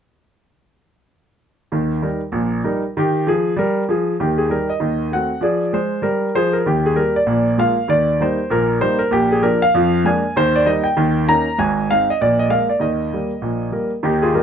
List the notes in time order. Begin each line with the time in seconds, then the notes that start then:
1.72 D#2 D#3
2.02 G3 D#4 A#4
2.32 A#1 A#2
2.64 G3 D#4 A#4
2.97 D#3 G4
3.27 F3 G#4
3.57 G3 A#4
3.89 F3 G#4
4.20 D#2 D#3 G4
4.38 G#4
4.50 G3 D#4 G4 A#4
4.70 D#5
4.80 D#2 D#3
5.12 A3 C4 F#4 F#5
5.41 F3 G#4 D5
5.73 G#3 C5
6.02 G3 A#4
6.35 F3 G#4 C5
6.53 A#4
6.66 D#2 D#3 G4
6.86 G#4
6.96 G3 A#3 G4 A#4
7.16 D5
7.26 A#1 A#2
7.58 G#3 A#3 F4 F5
7.88 D#2 D#3 D5
8.20 G3 A#3 D#4 C5
8.50 A#1 A#2 A#4
8.81 G3 A#3 D#4 C5
8.99 A#4
9.11 A#1 A#2 G4
9.32 G#4
9.42 F3 A#3 D4 A#4
9.62 F5
9.74 F2 F3
10.04 G#3 A#3 D4 G#5
10.36 D#2 D#3 C5
10.56 D5
10.66 G3 A#3 D#4 D#5
10.84 G5
10.97 D#2 D#3
11.28 A#3 C#4 D#4 A#5
11.58 G#1 G#2 G#5
11.90 G#3 C4 D#4 F5
12.10 D#5
12.21 A#1 A#2 D5
12.39 D#5
12.49 G#3 A#3 A#4 F5
12.69 D5
12.79 D#2 D#3 D#5
13.13 G3 A#3 A#4
13.42 A#1 A#2
13.71 G3 A#3 A#4
14.03 D#2 D#3 D#4 G4
14.22 F4 G#4
14.34 G3 A#3 D#4 G4 A#4